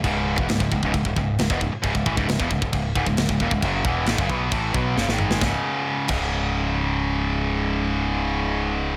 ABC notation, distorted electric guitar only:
X:1
M:4/4
L:1/16
Q:1/4=134
K:C#m
V:1 name="Distorted electric guitar" clef=bass
[C,,G,,C,]3 [E,,B,,] [C,,G,,] [C,,G,,] [C,,G,,] [C,,G,,] [C,,G,,] [C,,G,,] [C,,G,,]2 [C,,G,,] [E,,B,,] [C,,G,,] z | [C,,G,,] [C,,G,,] [A,,E,] [C,,G,,] [C,,G,,] [E,,B,,] [C,,G,,] [C,,G,,] [C,,G,,]2 [C,,G,,] [C,,G,,] [C,,G,,] [C,,G,,] [D,,^A,,] [C,,G,,] | [F,,C,F,]2 [E,,B,,E,]2 [G,,D,] [F,,C,] [B,,F,B,]2 [A,,E,A,]2 [B,,F,B,]2 [F,,C,] [G,,D,G,]3 | [C,,G,,C,] z4 z [C,,G,,C,]8- [C,,G,,C,]2- |
[C,,G,,C,]16 |]